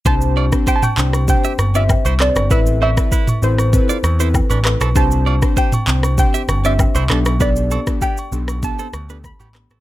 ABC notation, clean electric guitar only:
X:1
M:4/4
L:1/16
Q:1/4=98
K:C
V:1 name="Clean electric guitar"
[Gc] z [Fd] z [Gc]2 z3 [Ge] z [Fd] z [Ec] [CA] z | [EB] z [Ec] z [EB]2 z3 [Fd] z [Ec] z [DB] z [CA] | [Gc] z [Fd] z [Gc]2 z3 [Ge] z [Fd] z [Ec] [DA] z | [DB] z [CA] z [B,G]2 z3 [CA] z [DB] z [B,G] z [CA] |]